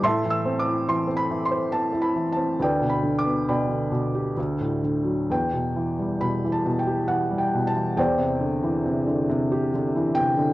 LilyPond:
<<
  \new Staff \with { instrumentName = "Felt piano" } { \time 3/4 \key g \major \tempo 4 = 68 << { \tuplet 3/2 { c'''8 e'''8 d'''8 c'''8 b''8 c'''8 a''8 b''8 a''8 } | \tuplet 3/2 { g''8 b''8 d'''8 } b''4. r8 | g''4 \tuplet 3/2 { b''8 a''8 g''8 fis''8 g''8 a''8 } | g''2 r8 g''8 | } \\ { <e'' a''>4. r4. | <b' d''>4 <d'' g''>4. r8 | b'4. r4. | <c'' d''>2 r4 | } >> }
  \new Staff \with { instrumentName = "Felt piano" } { \clef bass \time 3/4 \key g \major a,16 e16 c'16 e'16 e16 c'16 e16 c''16 c'16 e'16 e16 c'16 | d,16 b,16 d16 b16 b,16 d16 b,16 g'16 d,16 a,16 d16 fis16 | e,16 b,16 e16 g16 b,16 e16 b,16 g'16 e16 g16 b,16 e16 | e,16 c16 d16 e16 c16 d16 c16 g'16 d16 e16 c16 d16 | }
>>